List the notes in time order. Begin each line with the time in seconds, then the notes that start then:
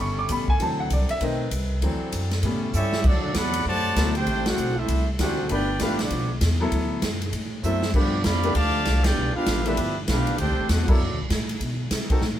Already playing: G1 C#3 G3 B3 C#4 E4 A4
0.01 C#6
0.19 D6
0.29 A1 C#3 G3 B3 B5, kick, hi-hat pedal, ride
0.48 G#5, kick
0.59 D2 E3 F#3 C4 D4 A5, ride
0.80 F#5
0.90 C2 D5, kick, hi-hat pedal, ride
1.09 E5, muted upright bass stroke, ride
1.20 B1 D#3 A3 C4 D#4 B4 D#5, kick, ride
1.51 C2, kick, hi-hat pedal, ride
1.82 D2 E3 F#3 C4 D4 A4, kick, ride
2.00 muted upright bass stroke
2.12 F#2, kick, hi-hat pedal, ride
2.31 snare, ride
2.42 A2 C#3 G3 B3 C#4 E4 A4, kick, ride
2.73 G2 G3 C#4 E4 G4 A4 E5, hi-hat pedal
2.93 snare
3.04 D2 F#3 A3 C4 D4 F#4 A4 D5, kick, crash
3.34 E2 C3 F#3 B3 A4 D5 F#5 B5, kick, snare, hi-hat pedal, ride
3.54 ride
3.65 F#2 C3 F#3 A3 F#4 C5 D5 A5, kick
3.96 D2 F#3 B3 E4 A4, kick, snare, hi-hat pedal, ride
4.15 A3 C4 D4 G4 A4 C5 G5, ride
4.27 A1, kick, ride
4.46 A3 C4 D4 F#4 A4 C5 F#5, snare, ride
4.58 B1, hi-hat pedal
4.77 A3 C4 D4 E4 A4 C5 E5
4.88 C2, kick, ride
5.19 D2 E3 A3 C4 D4 F#4 G4 A4 C5 F#5, kick, snare, hi-hat pedal, ride
5.49 G1 A3 B3 D4 F4 G4 B4 D5 G5, kick, ride
5.80 A1 A3 B3 D4 F4 G4 B4 F5, kick, snare, hi-hat pedal, ride
5.99 F3 B3 D4 F4 G4 D5, snare, ride
6.10 B1, kick, ride
6.41 E2, kick, snare, hi-hat pedal, ride
6.60 F#3 B3 E4 A4
6.72 D2, kick, ride
7.02 F#2, kick, snare, hi-hat pedal, ride
7.22 ride
7.32 A2, kick, ride
7.63 F#2 F#3 A3 B3 C4 D4 E4 A4 C5 E5, hi-hat pedal
7.82 snare
7.93 G2 F3 A3 B3 D4 F4 G4 B4 D5, kick, crash
8.24 F2 D3 F3 B3 G4 D5 F5 B5, kick, snare, hi-hat pedal, ride
8.43 A3 D4 G4 B4, ride
8.55 D2 D3 F3 A3 G4 D5 F5 A5, kick, ride
8.85 C2, kick, snare, hi-hat pedal, ride
9.03 B3 D4 F4 G4 B4 D5 G5, snare, ride
9.16 B1
9.34 B3 D4 F4 G4 B4 F5, muted upright bass stroke
9.46 A1, kick, snare, hi-hat pedal, ride
9.64 F3 A3 B3 D4 E4 G4 B4 E5, ride
9.77 G1, kick, ride
10.07 B1 B3 D4 F4 G4 B4 F5, kick, snare, hi-hat pedal, ride
10.27 ride
10.38 D2 A3 C4 D4 G4 A4 C5 G5, kick, ride
10.49 C2
10.58 A1
10.69 E2 A3 C4 D4 F#4 A4 C5 F#5, kick, snare, hi-hat pedal, ride
10.88 F#3 A3 B3 C4 D4 E4 F#4 A4 D5, kick, crash
10.99 F#2
11.10 D2
11.20 C2
11.30 A2, kick, snare, hi-hat pedal, ride
11.49 ride
11.61 B2, kick, ride
11.91 C3, kick, snare, hi-hat pedal, ride
12.10 C4 D#4 F#4 A4, muted upright bass stroke, kick, ride
12.21 A2, snare